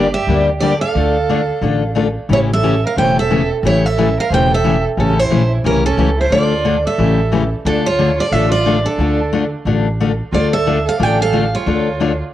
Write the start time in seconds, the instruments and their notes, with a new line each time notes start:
Already playing: upright bass G1, violin G4, steel-string acoustic guitar D5
0.13 violin G4, steel-string acoustic guitar E5
0.27 upright bass D2, steel-string acoustic guitar D3 G3 A#3 D4 G4
0.60 steel-string acoustic guitar D3 G3 A#3 D4 G4 D5, violin G4
0.80 violin A4, steel-string acoustic guitar F5
0.95 upright bass D2, steel-string acoustic guitar D3 A3 D4 F4 A4
1.29 steel-string acoustic guitar D3 A3 D4 F4 A4
1.62 upright bass A1, steel-string acoustic guitar D3 A3 D4 F4 A4
1.95 steel-string acoustic guitar D3 A3 D4 F4 A4
2.29 upright bass A1, steel-string acoustic guitar C#3 E3 A3 C#4 G4, violin E4
2.33 steel-string acoustic guitar C#5
2.52 violin A4, steel-string acoustic guitar E5
2.63 steel-string acoustic guitar C#3 E3 A3 C#4 G4
2.86 violin A#4, steel-string acoustic guitar F5
2.97 upright bass E1, steel-string acoustic guitar C#3 E3 A3 C#4 G4 G5, violin C5
3.19 violin A4, steel-string acoustic guitar E5
3.31 steel-string acoustic guitar C#3 E3 A3 C#4 G4
3.63 upright bass A1, steel-string acoustic guitar C#3 E3 A3 C#4 G4 C#5, violin E4
3.86 violin A4, steel-string acoustic guitar E5
3.98 steel-string acoustic guitar C#3 E3 A3 C#4 G4
4.20 violin A#4, steel-string acoustic guitar F5
4.30 upright bass E1, steel-string acoustic guitar C#3 E3 A3 C#4 G4 G5, violin C5
4.52 violin A4, steel-string acoustic guitar E5
4.64 steel-string acoustic guitar C#3 E3 A3 C#4 G4
4.97 upright bass A1, steel-string acoustic guitar C#3 E3 A3 C#4 G4 A4, violin C#4
5.19 violin E4, steel-string acoustic guitar C5
5.30 upright bass A#1, steel-string acoustic guitar C#3 E3 A3 C#4 G4
5.64 upright bass C2, steel-string acoustic guitar C#3 E3 A3 C#4 G4 A#4, violin C#4
5.86 violin C#4, steel-string acoustic guitar A4
5.97 upright bass C#2, steel-string acoustic guitar C#3 E3 A3 C#4 G4
6.18 violin E4, steel-string acoustic guitar C5
6.30 upright bass D2, steel-string acoustic guitar D3 A3 D4 F4 A4 D5, violin F4
6.65 steel-string acoustic guitar D3 A3 D4 F4 A4
6.85 violin A4, steel-string acoustic guitar E5
6.98 upright bass A1, steel-string acoustic guitar C#3 E3 A3 C#4 G4
7.32 steel-string acoustic guitar C#3 E3 A3 C#4 G4
7.65 upright bass D2, steel-string acoustic guitar D3 A3 D4 F4 A4, violin D4
7.85 violin F4, steel-string acoustic guitar C#5
7.99 steel-string acoustic guitar D3 A3 D4 F4 A4
8.18 violin F4, steel-string acoustic guitar D5
8.30 upright bass A1, steel-string acoustic guitar D3 A3 D4 F4 A4 E5, violin A4
8.51 violin F4, steel-string acoustic guitar D5
8.65 steel-string acoustic guitar D3 A3 D4 F4 A4
8.83 violin D4, steel-string acoustic guitar A4
8.98 upright bass D2, steel-string acoustic guitar D3 A3 D4 F4 A4
9.32 steel-string acoustic guitar D3 A3 D4 F4 A4
9.65 upright bass A1, steel-string acoustic guitar D3 A3 D4 F4 A4
10.00 steel-string acoustic guitar D3 A3 D4 F4 A4
10.32 upright bass D2, steel-string acoustic guitar D3 A3 D4 F4 A4 D5, violin F4
10.53 violin A4, steel-string acoustic guitar E5
10.66 steel-string acoustic guitar D3 A3 D4 F4 A4
10.86 violin A4, steel-string acoustic guitar F5
10.99 upright bass A1, steel-string acoustic guitar D3 A3 D4 F4 A4 G5, violin D5
11.20 violin A4, steel-string acoustic guitar F5
11.33 steel-string acoustic guitar D3 A3 D4 F4 A4
11.55 violin F4, steel-string acoustic guitar C#5
11.66 upright bass D2, steel-string acoustic guitar D3 A3 D4 F4 A4
12.00 steel-string acoustic guitar D3 A3 D4 F4 A4